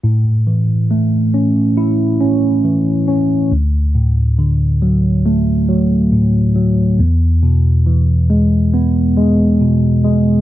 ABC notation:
X:1
M:4/4
L:1/8
Q:1/4=69
K:Alyd
V:1 name="Tine electric piano" clef=bass
A,, E, A, C E C E, C | =D,, A,, =D, F, A, F, A,, F, | E,, B,, E, G, B, G, B,, G, |]